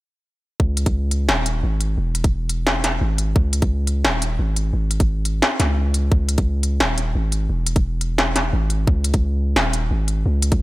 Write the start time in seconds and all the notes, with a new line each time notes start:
0.60 C#2, kick
0.77 closed hi-hat
0.86 kick, closed hi-hat
1.11 closed hi-hat
1.29 D#1, snare
1.46 closed hi-hat
1.63 G#1
1.81 closed hi-hat
1.98 E1
2.15 closed hi-hat
2.24 kick, closed hi-hat
2.49 closed hi-hat
2.67 snare
2.84 snare, closed hi-hat
3.01 G#1
3.18 closed hi-hat
3.36 C#2, kick
3.53 closed hi-hat
3.62 kick, closed hi-hat
3.87 closed hi-hat
4.05 D#1, snare
4.22 closed hi-hat
4.39 G#1
4.56 closed hi-hat
4.73 G#1
4.91 closed hi-hat
5.00 kick, closed hi-hat
5.25 closed hi-hat
5.42 snare
5.60 C#2, snare, closed hi-hat
5.94 closed hi-hat
6.12 C#2, kick
6.29 closed hi-hat
6.38 kick, closed hi-hat
6.63 closed hi-hat
6.80 D#1, snare
6.98 closed hi-hat
7.15 G#1
7.32 closed hi-hat
7.50 E1
7.66 closed hi-hat
7.76 kick, closed hi-hat
8.01 closed hi-hat
8.18 snare
8.36 snare, closed hi-hat
8.53 G#1
8.70 closed hi-hat
8.87 C#2, kick
9.04 closed hi-hat
9.14 kick, closed hi-hat
9.56 D#1, snare
9.73 closed hi-hat
9.91 G#1
10.08 closed hi-hat
10.26 C#2
10.42 closed hi-hat
10.52 kick, closed hi-hat